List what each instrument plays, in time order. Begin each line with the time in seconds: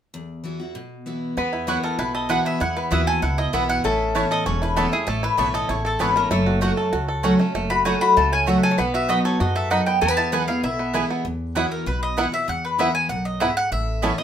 0.14 steel-string acoustic guitar E2
0.44 steel-string acoustic guitar E3 B3 E4 F#4
0.60 steel-string acoustic guitar E4 F#4
0.75 steel-string acoustic guitar B2
1.06 steel-string acoustic guitar E3 B3 E4 F#4
1.37 steel-string acoustic guitar E2, upright bass E2, five-string banjo B3, resonator guitar played with a steel bar B4
1.53 five-string banjo E4
1.67 steel-string acoustic guitar E3 B3 E4 F#4, mandolin B3 E4 B4 C#5 F#5, five-string banjo B3
1.83 five-string banjo A4, mandolin A#4
1.99 upright bass B1, steel-string acoustic guitar B2, five-string banjo E4, mandolin B4
2.15 five-string banjo A4, mandolin D#5
2.29 steel-string acoustic guitar E3 B3 E4 F#4, mandolin B3 E4 B4 F#5, five-string banjo E4
2.45 five-string banjo B3, mandolin E5
2.60 steel-string acoustic guitar E2, upright bass E2, five-string banjo E4, mandolin F#5
2.77 five-string banjo B3, mandolin B4
2.91 upright bass D#2, steel-string acoustic guitar E3 B3 E4 F#4, mandolin B3 E4 B4 E5 F#5, five-string banjo E4
3.07 five-string banjo A4, mandolin G#5
3.22 upright bass C#2, steel-string acoustic guitar B2, five-string banjo E4, mandolin F#5
3.38 five-string banjo E4, mandolin D#5
3.53 upright bass B1, steel-string acoustic guitar E3 B3 E4 F#4, mandolin B3 E4 B4 E5 F#5, five-string banjo B3
3.69 five-string banjo E4, mandolin F#5
3.84 upright bass A1, steel-string acoustic guitar A2, five-string banjo C#4, resonator guitar played with a steel bar A4, mandolin E5
4.15 steel-string acoustic guitar E3 B3 C#4 E4, mandolin B3 E4 C#5 A5, five-string banjo E4
4.31 five-string banjo A4, mandolin D#5
4.46 upright bass E1, steel-string acoustic guitar E2, five-string banjo C#4, mandolin C#5
4.62 five-string banjo E4, mandolin B4
4.76 steel-string acoustic guitar E3 B3 C#4 E4, five-string banjo A3, mandolin B3 E4 A4 C#5 A5
4.92 steel-string acoustic guitar C#4 E4, five-string banjo E4, mandolin G#4
5.07 upright bass A1, steel-string acoustic guitar A2, five-string banjo A3, mandolin A4
5.23 five-string banjo E4, mandolin B4
5.37 upright bass B1, steel-string acoustic guitar E3 B3 C#4 E4, five-string banjo A3, mandolin B3 E4 C#5 A5
5.54 five-string banjo A4, mandolin D#5
5.69 upright bass A1, steel-string acoustic guitar E2, five-string banjo E4, mandolin C#5
5.85 five-string banjo A4, mandolin A4
5.99 upright bass G#1, steel-string acoustic guitar E3 B3 C#4 E4, mandolin B3 E4 B4 C#5 A5, five-string banjo C#4
6.16 five-string banjo A3, mandolin A#4
6.31 upright bass F#1, steel-string acoustic guitar F#2, five-string banjo A3, mandolin A4, resonator guitar played with a steel bar C#5
6.46 five-string banjo F#4
6.61 steel-string acoustic guitar F#3 A3 C#4 F#4, mandolin A3 F#4 C#5 F#5, five-string banjo A3
6.77 five-string banjo A4
6.93 upright bass C#2, steel-string acoustic guitar C#3, five-string banjo F#4
7.08 five-string banjo A4
7.23 steel-string acoustic guitar F#3 A3 C#4 F#4, mandolin A3 F#4 C#5 F#5, five-string banjo C#4
7.39 five-string banjo A3, steel-string acoustic guitar C#4 F#4
7.55 upright bass F#1, steel-string acoustic guitar F#2, five-string banjo A3
7.70 five-string banjo F#4, mandolin B5
7.85 steel-string acoustic guitar F#3 A3 C#4 F#4, mandolin A3 F#4 C#5 F#5 G#5, five-string banjo A3
8.01 five-string banjo F#4, mandolin B5
8.17 upright bass C#2, steel-string acoustic guitar C#3, five-string banjo A3, mandolin A5
8.32 five-string banjo C#4, mandolin G#5
8.46 steel-string acoustic guitar F#3 A3 C#4 F#4, mandolin A3 F#4 C#5 E5 F#5, five-string banjo F#4
8.63 five-string banjo A4, mandolin G#5
8.71 resonator guitar played with a steel bar C#5
8.78 upright bass B1, steel-string acoustic guitar B2, five-string banjo B3, resonator guitar played with a steel bar B4, mandolin F#5
8.94 five-string banjo F#4, mandolin E5
9.09 steel-string acoustic guitar F#3 B3 D#4 F#4, mandolin B3 F#4 D#5 B5, five-string banjo B3
9.25 five-string banjo A4, mandolin C#5
9.40 upright bass F#2, steel-string acoustic guitar G#2, five-string banjo F#4, mandolin D#5
9.56 five-string banjo A4, mandolin E5
9.70 steel-string acoustic guitar F#2, mandolin B3 F#4 D#5 F#5 B5, five-string banjo D#4
9.86 five-string banjo B3, mandolin G5
10.01 steel-string acoustic guitar E2, upright bass E2, five-string banjo A3, resonator guitar played with a steel bar B4, mandolin G#5
10.08 five-string banjo B3
10.17 five-string banjo E4, mandolin A5
10.32 steel-string acoustic guitar E3 G#3 B3 E4, mandolin B3 E4 B4 F#5 G#5, five-string banjo B3
10.47 steel-string acoustic guitar B3 E4, five-string banjo E4, mandolin F5
10.63 upright bass B1, steel-string acoustic guitar B2, five-string banjo E4, mandolin E5
10.74 resonator guitar played with a steel bar A4
10.79 five-string banjo B3
10.93 steel-string acoustic guitar E3 G#3 B3 E4, mandolin B3 E4 B4 G#5, five-string banjo E4
11.10 five-string banjo B3
11.25 steel-string acoustic guitar E2, upright bass E2
11.55 steel-string acoustic guitar E3 B3 E4 F#4, mandolin B3 E4 B4 C#5 F#5, five-string banjo B3 E4
11.71 mandolin A#4
11.86 upright bass B1, steel-string acoustic guitar B2, mandolin B4
12.03 mandolin D#5
12.17 steel-string acoustic guitar E3 B3 E4 F#4, mandolin B3 E4 B4 F#5, five-string banjo B3 E4
12.32 steel-string acoustic guitar E4 F#4, mandolin E5
12.48 steel-string acoustic guitar E2, upright bass E2, mandolin F#5
12.65 mandolin B4
12.78 steel-string acoustic guitar E3 B3 E4 F#4, mandolin B3 E4 B4 E5 F#5, five-string banjo B3 E4
12.95 mandolin G#5
13.09 upright bass B1, steel-string acoustic guitar F#2, mandolin F#5
13.25 mandolin D#5
13.40 steel-string acoustic guitar G#2, mandolin B3 E4 B4 E5 F#5, five-string banjo B3 E4
13.57 mandolin F#5
13.72 upright bass A1, steel-string acoustic guitar A2, mandolin E5
14.02 steel-string acoustic guitar E3 B3 C#4 E4, five-string banjo A3 C#4 E4, mandolin B3 E4 C#5 A5
14.18 steel-string acoustic guitar C#4 E4, mandolin D#5